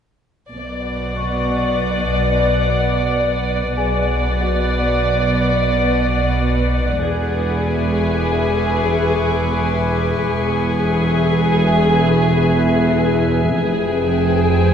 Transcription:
0, 0, Header, 1, 7, 480
1, 0, Start_track
1, 0, Tempo, 652174
1, 367, Time_signature, 5, 2, 24, 8
1, 10847, End_track
2, 0, Start_track
2, 0, Title_t, "Violin section"
2, 0, Program_c, 0, 48
2, 5170, Note_on_c, 0, 86, 32
2, 5173, Note_on_c, 0, 83, 30
2, 5655, Note_on_c, 0, 85, 32
2, 7849, Note_off_c, 0, 86, 0
2, 7849, Note_on_c, 0, 87, 32
2, 8739, Note_off_c, 0, 87, 0
2, 9700, Note_off_c, 0, 83, 0
2, 9701, Note_off_c, 0, 85, 0
2, 10847, End_track
3, 0, Start_track
3, 0, Title_t, "Ambient pad"
3, 0, Program_c, 1, 92
3, 374, Note_on_c, 1, 74, 45
3, 376, Note_on_c, 1, 78, 44
3, 380, Note_on_c, 1, 71, 44
3, 2741, Note_off_c, 1, 74, 0
3, 2742, Note_off_c, 1, 78, 0
3, 2744, Note_off_c, 1, 71, 0
3, 2776, Note_on_c, 1, 71, 47
3, 2776, Note_on_c, 1, 74, 47
3, 2778, Note_on_c, 1, 78, 45
3, 5142, Note_off_c, 1, 71, 0
3, 5142, Note_off_c, 1, 74, 0
3, 5143, Note_off_c, 1, 78, 0
3, 5154, Note_on_c, 1, 71, 47
3, 5161, Note_on_c, 1, 76, 45
3, 5161, Note_on_c, 1, 80, 44
3, 7531, Note_off_c, 1, 71, 0
3, 7548, Note_off_c, 1, 76, 0
3, 7548, Note_off_c, 1, 80, 0
3, 7555, Note_on_c, 1, 71, 46
3, 7557, Note_on_c, 1, 76, 48
3, 7557, Note_on_c, 1, 80, 47
3, 9932, Note_off_c, 1, 71, 0
3, 9932, Note_off_c, 1, 76, 0
3, 9932, Note_off_c, 1, 80, 0
3, 9969, Note_on_c, 1, 72, 52
3, 9970, Note_on_c, 1, 79, 53
3, 9974, Note_on_c, 1, 80, 53
3, 10847, Note_off_c, 1, 72, 0
3, 10847, Note_off_c, 1, 79, 0
3, 10847, Note_off_c, 1, 80, 0
3, 10847, End_track
4, 0, Start_track
4, 0, Title_t, "Celesta"
4, 0, Program_c, 2, 8
4, 508, Control_c, 2, 64, 127
4, 856, Note_on_c, 2, 85, 29
4, 2262, Note_off_c, 2, 85, 0
4, 2777, Note_on_c, 2, 80, 36
4, 2778, Note_on_c, 2, 68, 24
4, 3245, Note_on_c, 2, 78, 27
4, 3255, Note_on_c, 2, 66, 25
4, 4182, Note_off_c, 2, 80, 0
4, 4183, Note_off_c, 2, 68, 0
4, 4657, Note_off_c, 2, 78, 0
4, 4661, Note_off_c, 2, 66, 0
4, 5180, Control_c, 2, 64, 0
4, 5302, Control_c, 2, 64, 127
4, 9487, Note_on_c, 2, 76, 33
4, 9488, Note_on_c, 2, 64, 31
4, 9981, Control_c, 2, 64, 0
4, 10093, Control_c, 2, 64, 127
4, 10847, Note_off_c, 2, 64, 0
4, 10847, Note_off_c, 2, 76, 0
4, 10847, End_track
5, 0, Start_track
5, 0, Title_t, "Violin section"
5, 0, Program_c, 3, 48
5, 363, Note_on_c, 3, 74, 34
5, 2735, Note_off_c, 3, 74, 0
5, 2766, Note_on_c, 3, 74, 36
5, 5137, Note_off_c, 3, 74, 0
5, 5159, Note_on_c, 3, 68, 42
5, 7533, Note_off_c, 3, 68, 0
5, 7565, Note_on_c, 3, 68, 48
5, 9936, Note_off_c, 3, 68, 0
5, 9963, Note_on_c, 3, 68, 52
5, 10847, Note_off_c, 3, 68, 0
5, 10847, End_track
6, 0, Start_track
6, 0, Title_t, "Cello section"
6, 0, Program_c, 4, 48
6, 376, Note_on_c, 4, 47, 34
6, 2742, Note_off_c, 4, 47, 0
6, 2779, Note_on_c, 4, 47, 35
6, 5143, Note_off_c, 4, 47, 0
6, 5171, Note_on_c, 4, 40, 41
6, 7539, Note_off_c, 4, 40, 0
6, 7569, Note_on_c, 4, 40, 46
6, 9938, Note_off_c, 4, 40, 0
6, 9970, Note_on_c, 4, 41, 49
6, 10847, Note_off_c, 4, 41, 0
6, 10847, End_track
7, 0, Start_track
7, 0, Title_t, "Double bass section"
7, 0, Program_c, 5, 48
7, 368, Note_on_c, 5, 35, 32
7, 2738, Note_off_c, 5, 35, 0
7, 2767, Note_on_c, 5, 35, 37
7, 5137, Note_off_c, 5, 35, 0
7, 5168, Note_on_c, 5, 28, 38
7, 7538, Note_off_c, 5, 28, 0
7, 7566, Note_on_c, 5, 28, 48
7, 9937, Note_off_c, 5, 28, 0
7, 9962, Note_on_c, 5, 29, 50
7, 10847, Note_off_c, 5, 29, 0
7, 10847, End_track
0, 0, End_of_file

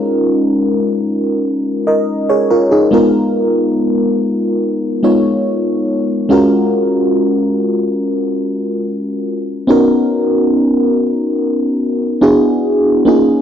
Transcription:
0, 0, Header, 1, 2, 480
1, 0, Start_track
1, 0, Tempo, 845070
1, 1661, Time_signature, 4, 2, 24, 8
1, 7621, End_track
2, 0, Start_track
2, 0, Title_t, "FM electric piano"
2, 0, Program_c, 0, 5
2, 0, Control_c, 0, 64, 127
2, 0, Note_on_c, 0, 56, 75
2, 0, Note_on_c, 0, 61, 73
2, 0, Note_on_c, 0, 63, 67
2, 0, Note_on_c, 0, 65, 67
2, 0, Note_on_c, 0, 70, 79
2, 920, Note_off_c, 0, 63, 0
2, 922, Note_off_c, 0, 65, 0
2, 924, Note_off_c, 0, 70, 0
2, 1062, Note_on_c, 0, 75, 61
2, 1066, Note_on_c, 0, 70, 55
2, 1290, Note_off_c, 0, 75, 0
2, 1292, Note_off_c, 0, 70, 0
2, 1303, Note_on_c, 0, 73, 74
2, 1307, Note_on_c, 0, 68, 63
2, 1416, Note_off_c, 0, 73, 0
2, 1418, Note_off_c, 0, 68, 0
2, 1423, Note_on_c, 0, 70, 75
2, 1426, Note_on_c, 0, 65, 66
2, 1536, Note_off_c, 0, 70, 0
2, 1538, Note_off_c, 0, 65, 0
2, 1541, Note_on_c, 0, 68, 70
2, 1544, Note_on_c, 0, 63, 55
2, 1635, Note_off_c, 0, 56, 0
2, 1637, Note_off_c, 0, 61, 0
2, 1653, Note_on_c, 0, 56, 74
2, 1654, Note_off_c, 0, 63, 0
2, 1657, Note_on_c, 0, 59, 68
2, 1661, Note_on_c, 0, 63, 67
2, 1666, Note_on_c, 0, 65, 70
2, 1669, Control_c, 0, 64, 0
2, 1670, Note_on_c, 0, 70, 83
2, 1769, Note_off_c, 0, 68, 0
2, 1776, Control_c, 0, 64, 127
2, 2834, Note_off_c, 0, 56, 0
2, 2837, Note_off_c, 0, 59, 0
2, 2839, Note_off_c, 0, 63, 0
2, 2841, Note_off_c, 0, 65, 0
2, 2843, Note_off_c, 0, 70, 0
2, 2856, Note_on_c, 0, 56, 55
2, 2859, Note_on_c, 0, 59, 50
2, 2861, Note_on_c, 0, 63, 49
2, 2864, Note_on_c, 0, 65, 51
2, 2865, Note_on_c, 0, 73, 61
2, 3566, Note_off_c, 0, 56, 0
2, 3573, Note_on_c, 0, 56, 72
2, 3575, Note_off_c, 0, 65, 0
2, 3577, Note_on_c, 0, 61, 70
2, 3580, Note_off_c, 0, 59, 0
2, 3581, Note_off_c, 0, 63, 0
2, 3582, Note_on_c, 0, 65, 72
2, 3583, Note_off_c, 0, 73, 0
2, 3586, Note_on_c, 0, 66, 70
2, 3589, Control_c, 0, 64, 0
2, 3591, Note_on_c, 0, 70, 81
2, 3705, Control_c, 0, 64, 127
2, 5474, Note_off_c, 0, 56, 0
2, 5477, Note_off_c, 0, 61, 0
2, 5479, Note_off_c, 0, 65, 0
2, 5481, Note_off_c, 0, 66, 0
2, 5483, Note_off_c, 0, 70, 0
2, 5495, Note_on_c, 0, 59, 80
2, 5499, Note_on_c, 0, 61, 71
2, 5503, Note_on_c, 0, 63, 69
2, 5507, Control_c, 0, 64, 0
2, 5507, Note_on_c, 0, 66, 71
2, 5512, Note_on_c, 0, 70, 86
2, 5615, Control_c, 0, 64, 127
2, 6915, Note_off_c, 0, 59, 0
2, 6918, Note_off_c, 0, 61, 0
2, 6919, Note_off_c, 0, 63, 0
2, 6922, Note_off_c, 0, 66, 0
2, 6924, Note_off_c, 0, 70, 0
2, 6937, Note_on_c, 0, 59, 76
2, 6940, Note_on_c, 0, 62, 73
2, 6942, Note_on_c, 0, 64, 70
2, 6944, Note_on_c, 0, 66, 72
2, 6946, Note_on_c, 0, 68, 87
2, 6949, Control_c, 0, 64, 0
2, 7044, Control_c, 0, 64, 127
2, 7413, Note_on_c, 0, 58, 79
2, 7418, Note_on_c, 0, 61, 66
2, 7419, Note_off_c, 0, 59, 0
2, 7421, Note_off_c, 0, 62, 0
2, 7422, Note_off_c, 0, 64, 0
2, 7423, Note_off_c, 0, 66, 0
2, 7423, Note_on_c, 0, 63, 67
2, 7424, Note_off_c, 0, 68, 0
2, 7427, Note_on_c, 0, 65, 69
2, 7430, Control_c, 0, 64, 0
2, 7431, Note_on_c, 0, 68, 83
2, 7539, Control_c, 0, 64, 127
2, 7621, Note_off_c, 0, 58, 0
2, 7621, Note_off_c, 0, 61, 0
2, 7621, Note_off_c, 0, 63, 0
2, 7621, Note_off_c, 0, 65, 0
2, 7621, Note_off_c, 0, 68, 0
2, 7621, End_track
0, 0, End_of_file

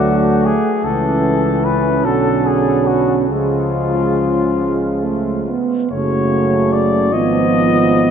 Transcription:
0, 0, Header, 1, 6, 480
1, 0, Start_track
1, 0, Key_signature, 3, "minor"
1, 0, Tempo, 796813
1, 513, Time_signature, 6, 3, 24, 8
1, 1483, Tempo, 864553
1, 3403, Tempo, 802139
1, 4712, End_track
2, 0, Start_track
2, 0, Title_t, "Cornet"
2, 0, Program_c, 0, 56
2, 0, Note_on_c, 0, 66, 73
2, 274, Note_on_c, 0, 68, 69
2, 283, Note_off_c, 0, 66, 0
2, 508, Note_on_c, 0, 69, 69
2, 517, Note_off_c, 0, 68, 0
2, 991, Note_on_c, 0, 71, 62
2, 1000, Note_off_c, 0, 69, 0
2, 1232, Note_on_c, 0, 69, 66
2, 1241, Note_off_c, 0, 71, 0
2, 1485, Note_on_c, 0, 68, 56
2, 1494, Note_off_c, 0, 69, 0
2, 1708, Note_on_c, 0, 66, 51
2, 1716, Note_off_c, 0, 68, 0
2, 1875, Note_off_c, 0, 66, 0
2, 1945, Note_on_c, 0, 65, 59
2, 3137, Note_off_c, 0, 65, 0
2, 3399, Note_on_c, 0, 73, 65
2, 3884, Note_on_c, 0, 74, 62
2, 3893, Note_off_c, 0, 73, 0
2, 4124, Note_on_c, 0, 75, 79
2, 4133, Note_off_c, 0, 74, 0
2, 4712, Note_off_c, 0, 75, 0
2, 4712, End_track
3, 0, Start_track
3, 0, Title_t, "French horn section"
3, 0, Program_c, 1, 60
3, 0, Note_on_c, 1, 57, 49
3, 413, Note_off_c, 1, 57, 0
3, 515, Note_on_c, 1, 61, 55
3, 1929, Note_off_c, 1, 61, 0
3, 1950, Note_on_c, 1, 56, 48
3, 2635, Note_off_c, 1, 56, 0
3, 2682, Note_on_c, 1, 56, 49
3, 2903, Note_off_c, 1, 56, 0
3, 2911, Note_on_c, 1, 57, 54
3, 3158, Note_off_c, 1, 57, 0
3, 3160, Note_on_c, 1, 59, 44
3, 3395, Note_off_c, 1, 59, 0
3, 3400, Note_on_c, 1, 57, 51
3, 4103, Note_off_c, 1, 57, 0
3, 4127, Note_on_c, 1, 59, 51
3, 4712, Note_off_c, 1, 59, 0
3, 4712, End_track
4, 0, Start_track
4, 0, Title_t, "Euphonium"
4, 0, Program_c, 2, 58
4, 0, Note_on_c, 2, 50, 53
4, 349, Note_off_c, 2, 50, 0
4, 518, Note_on_c, 2, 52, 53
4, 1236, Note_on_c, 2, 54, 45
4, 1245, Note_off_c, 2, 52, 0
4, 1948, Note_off_c, 2, 54, 0
4, 1951, Note_on_c, 2, 53, 43
4, 3190, Note_off_c, 2, 53, 0
4, 3401, Note_on_c, 2, 54, 50
4, 4128, Note_on_c, 2, 53, 48
4, 4137, Note_off_c, 2, 54, 0
4, 4712, Note_off_c, 2, 53, 0
4, 4712, End_track
5, 0, Start_track
5, 0, Title_t, "Trombone"
5, 0, Program_c, 3, 57
5, 0, Note_on_c, 3, 54, 54
5, 346, Note_off_c, 3, 54, 0
5, 513, Note_on_c, 3, 52, 46
5, 1228, Note_on_c, 3, 50, 46
5, 1237, Note_off_c, 3, 52, 0
5, 1940, Note_off_c, 3, 50, 0
5, 1943, Note_on_c, 3, 49, 45
5, 3186, Note_off_c, 3, 49, 0
5, 3394, Note_on_c, 3, 49, 49
5, 4127, Note_on_c, 3, 53, 47
5, 4136, Note_off_c, 3, 49, 0
5, 4712, Note_off_c, 3, 53, 0
5, 4712, End_track
6, 0, Start_track
6, 0, Title_t, "Tuba"
6, 0, Program_c, 4, 58
6, 0, Note_on_c, 4, 38, 51
6, 347, Note_off_c, 4, 38, 0
6, 510, Note_on_c, 4, 37, 49
6, 1234, Note_on_c, 4, 35, 46
6, 1243, Note_off_c, 4, 37, 0
6, 1946, Note_on_c, 4, 37, 48
6, 1954, Note_off_c, 4, 35, 0
6, 3209, Note_off_c, 4, 37, 0
6, 3399, Note_on_c, 4, 30, 52
6, 4125, Note_on_c, 4, 32, 49
6, 4134, Note_off_c, 4, 30, 0
6, 4712, Note_off_c, 4, 32, 0
6, 4712, End_track
0, 0, End_of_file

